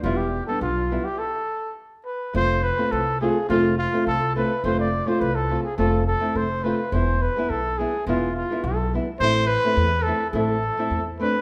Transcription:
<<
  \new Staff \with { instrumentName = "Cornet" } { \time 2/4 \key e \phrygian \tempo 4 = 105 f'16 g'8 a'16 f'8. g'16 | a'4 r8 b'8 | \key f \lydian c''8 b'8 a'8 gis'8 | f'8 f'8 a'8 b'8 |
c''16 d''8 c''16 b'16 a'8 gis'16 | a'8 a'8 c''8 b'8 | c''8 b'8 a'8 gis'8 | f'8 f'8 a'8 r8 |
c''8 b'4 a'8 | a'4. b'8 | }
  \new Staff \with { instrumentName = "Nylon-string guitar" } { \time 2/4 \key e \phrygian <g b e'>8 r16 <g b d'>16 r8 <g b e'>16 r16 | r2 | \key f \lydian <a c' f'>8 r16 <a c' f'>16 r8 <a c' f'>16 r16 | <a c' f'>8 r16 <a c' f'>16 r8 <a c' f'>16 r16 |
<a c' f'>8 r16 <a c' f'>16 r8 <a c' f'>16 r16 | <a c' f'>8 r16 <a c' e'>16 r8 <a c' f'>16 r16 | <gis b e'>8 r16 <gis b e'>16 r8 <gis b e'>16 r16 | <gis b e'>8 r16 <gis b e'>16 r8 <gis b e'>16 r16 |
<a c' e'>8 r16 <a c' e'>16 r8 <a c' e'>16 r16 | <a c' e'>8 r16 <a c' e'>16 r8 <a c' d'>16 r16 | }
  \new Staff \with { instrumentName = "Upright bass" } { \clef bass \time 2/4 \key e \phrygian e,,4 b,,4 | r2 | \key f \lydian f,,4 c,4 | f,,4 c,4 |
f,,4 c,4 | f,,4 f,,4 | e,,4 b,,4 | e,,4 b,,4 |
a,,4 e,4 | a,,4 e,4 | }
>>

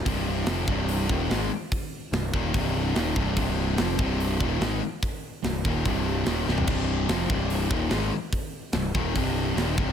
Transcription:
<<
  \new Staff \with { instrumentName = "Distorted electric guitar" } { \clef bass \time 4/4 \key c \minor \tempo 4 = 145 <c, g, c>4 <f, c f>8 <c, g, c>4 <ees, bes, ees>8 <aes, ees aes>8 r8 | r4 <c, g,>8 <ees, bes, ees>8 <c, g, c>4 <ees, bes, ees>8 <c, g, c>8 | <c, g, c>4 <f, c f>8 <c, g, c>4 <ees, bes, ees>8 <aes, ees aes>8 r8 | r4 <c, g,>8 <ees, bes, ees>8 <c, g, c>4 <ees, bes, ees>8 <c, g, c>8 |
<c, g, c>4 <f, c f>8 <c, g, c>4 <ees, bes, ees>8 <aes, ees aes>8 r8 | r4 <c, g,>8 <ees, bes, ees>8 <c, g, c>4 <ees, bes, ees>8 <c, g, c>8 | }
  \new Staff \with { instrumentName = "Distorted electric guitar" } { \clef bass \time 4/4 \key c \minor <c, g, c>4 <f, c f>8 <c, g, c>4 <ees, bes, ees>8 <aes, ees aes>8 r8 | r4 <c, g,>8 <ees, bes, ees>8 <c, g, c>4 <ees, bes, ees>8 <c, g, c>8 | <c, g, c>4 <f, c f>8 <c, g, c>4 <ees, bes, ees>8 <aes, ees aes>8 r8 | r4 <c, g,>8 <ees, bes, ees>8 <c, g, c>4 <ees, bes, ees>8 <c, g, c>8 |
<c, g, c>4 <f, c f>8 <c, g, c>4 <ees, bes, ees>8 <aes, ees aes>8 r8 | r4 <c, g,>8 <ees, bes, ees>8 <c, g, c>4 <ees, bes, ees>8 <c, g, c>8 | }
  \new Staff \with { instrumentName = "Picked electric bass" } { \clef bass \time 4/4 \key c \minor c,,4 f,,8 c,,4 ees,,8 aes,,8 r8 | r4 c,,8 ees,,8 c,,4 ees,,8 c,,8 | c,,4 f,,8 c,,4 ees,,8 aes,,8 r8 | r4 c,,8 ees,,8 c,,4 ees,,8 c,,8 |
c,,4 f,,8 c,,4 ees,,8 aes,,8 r8 | r4 c,,8 ees,,8 c,,4 ees,,8 c,,8 | }
  \new DrumStaff \with { instrumentName = "Drums" } \drummode { \time 4/4 <hho bd>4 <hho sn>8 bd8 hho8 bd8 <hho sn>4 | <hho bd>4 <hho sn>8 bd8 <hho bd>4 <hho sn>8 bd8 | <hho bd>4 <hho sn>8 bd8 hho8 bd8 <hho sn>4 | <hho bd>4 <hho sn>8 bd8 <hho bd>4 <hho sn>8 sn16 tomfh16 |
<cymc bd>4 <hho sn>8 bd8 hho8 bd8 <hho sn>4 | <hho bd>4 <hho sn>8 bd8 <hho bd>4 <hho sn>8 bd8 | }
>>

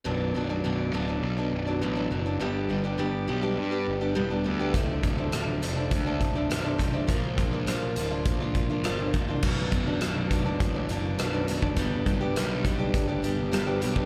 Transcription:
<<
  \new Staff \with { instrumentName = "Steel-string acoustic guitar" } { \time 4/4 \key b \minor \tempo 4 = 102 <fis, b, fis d'>8 <fis, b, fis d'>16 <b, fis d'>16 <fis, b, fis d'>8 <fis, b, fis d'>16 <b, fis d'>8 <b, fis d'>8 <b, fis d'>16 <fis, b, fis d'>16 <b, fis d'>16 <fis, b, fis d'>16 <b, fis d'>16 | <g, d g b d' g'>8 <g b d' g'>16 <g b d' g'>16 <g, d g b d' g'>8 <g b d' g'>16 <g b d' g'>8 <g b d' g'>8 <g b d' g'>16 <g, d g b d' g'>16 <g b d' g'>16 <g b d' g'>16 <g b d' g'>16 | <d, a, d f a d'>8 <d f a d'>16 <d f a d'>16 <d, a, d f a d'>8 <d f a d'>16 <d f a d'>8 <d f a d'>8 <d f a d'>16 <d, a, d f a d'>16 <d f a d'>16 <d f a d'>16 <d f a d'>16 | <ais, eis ais d' eis'>8 <eis ais d' eis'>16 <ais d' eis'>16 <ais, eis ais d' eis'>8 <eis ais d' eis'>16 <ais d' eis'>8 <ais d' eis'>8 <ais d' eis'>16 <ais, eis ais d' eis'>16 <ais d' eis'>16 <eis ais d' eis'>16 <ais d' eis'>16 |
<fis, b, fis d'>8 <fis, b, fis d'>16 <b, fis d'>16 <fis, b, fis d'>8 <fis, b, fis d'>16 <b, fis d'>8 <b, fis d'>16 <fis, b, fis d'>8 <fis, b, fis d'>16 <b, fis d'>16 <fis, b, fis d'>16 <b, fis d'>16 | <g, d g b d' g'>8 <g b d' g'>16 <g b d' g'>16 <g, d g b d' g'>8 <g b d' g'>16 <g b d' g'>8 <g b d' g'>16 <g b d' g'>8 <g, d g b d' g'>16 <g b d' g'>16 <g b d' g'>16 <g b d' g'>16 | }
  \new Staff \with { instrumentName = "Picked electric bass" } { \clef bass \time 4/4 \key b \minor b,,,8 b,,,8 b,,,8 d,,8 b,,8 b,,,8 a,,8 fis,,8 | g,,8 g,,8 g,,8 b,,8 g,8 g,,8 e,,8 d,8 | d,,8 d,,8 d,,8 f,,8 d,8 d,,8 b,,,8 b,,,8 | ais,,8 ais,,8 ais,,8 d,,8 ais,,8 ais,,8 g,,8 c,,8 |
b,,,8 b,,,8 b,,,8 b,,,8 a,,8 fis,,8 b,,,8 b,,,8 | g,,8 g,,8 b,,4 g,,4 g,,8 b,,8 | }
  \new DrumStaff \with { instrumentName = "Drums" } \drummode { \time 4/4 r4 r4 r4 r4 | r4 r4 r4 r4 | <hh bd>8 <hh bd>8 <hh ss>8 hh8 <hh bd>8 <hh bd>8 <hh ss>8 <hh bd>8 | <hh bd>8 <hh bd>8 <hh ss>8 hh8 <hh bd>8 <hh bd>8 <hh ss>8 <hh bd>8 |
<cymc bd>8 <hh bd>8 <hh ss>8 <hh bd>8 <hh bd>8 hh8 <hh ss>8 hh16 bd16 | <hh bd>8 <hh bd>8 <hh ss>8 <hh bd>8 <hh bd>8 hh8 <hh ss>8 hh16 bd16 | }
>>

